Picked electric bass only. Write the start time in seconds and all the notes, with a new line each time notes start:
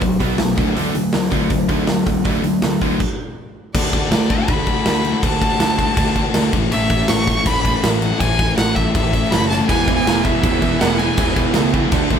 0.02 B1
0.20 B1
0.40 B1
0.58 D2
0.76 D2
0.95 D2
1.14 D2
1.32 D2
1.51 D2
1.69 D2
1.88 D2
2.07 D2
2.26 D2
2.44 D2
2.63 D2
2.81 D2
3.75 D2
4.11 D2
4.48 D2
4.85 D2
5.23 D2
5.59 D2
5.97 D2
6.34 D2
6.53 A1
6.73 A1
7.08 A1
7.46 A1
7.83 A1
8.21 A1
8.58 A1
8.95 A1
9.34 F#1
9.69 E1
10.06 E1
10.43 E1
10.81 E1
11.17 E1
11.55 C#2
11.92 D2